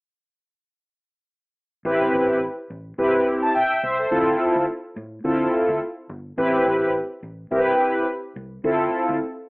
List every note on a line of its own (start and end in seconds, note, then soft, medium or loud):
1.85 2.07 A1 loud
1.85 2.39 C4 medium
1.85 2.39 E4 medium
1.85 2.40 G4 medium
1.85 2.40 B4 medium
2.13 2.47 A1 loud
2.70 2.92 A1 medium
2.98 3.20 C2 medium
2.98 3.52 C4 medium
2.98 3.52 E4 medium
2.98 3.53 G4 medium
2.98 3.27 B4 medium
3.42 3.54 A5 medium
3.55 3.82 E5 medium
3.55 3.82 G5 medium
3.83 4.05 C2 medium
3.83 3.97 C5 medium
3.83 3.98 E5 medium
3.99 4.10 A4 medium
3.99 4.26 C5 medium
4.11 4.33 D2 loud
4.11 4.65 C4 medium
4.11 4.66 E4 medium
4.11 4.66 F4 medium
4.11 4.66 A4 medium
4.56 4.65 D2 medium
4.96 5.18 A2 medium
5.24 5.46 D3 loud
5.24 5.79 C4 medium
5.24 5.79 E4 medium
5.24 5.79 F4 medium
5.24 5.79 A4 medium
5.69 5.78 D2 medium
6.09 6.31 G1 medium
6.37 6.59 A1 loud
6.37 6.92 C4 medium
6.37 6.92 E4 medium
6.37 6.92 G4 medium
6.37 6.92 B4 medium
6.66 7.00 A1 loud
7.23 7.44 A1 medium
7.51 7.73 C2 medium
7.51 8.05 C4 medium
7.51 8.05 E4 medium
7.51 8.05 G4 medium
7.51 7.59 A#4 medium
7.58 8.09 B4 medium
8.36 8.58 C2 medium
8.64 8.86 D2 loud
8.64 9.18 C4 medium
8.64 9.18 E4 medium
8.64 9.19 F4 medium
8.64 9.19 A4 medium
9.09 9.18 D2 medium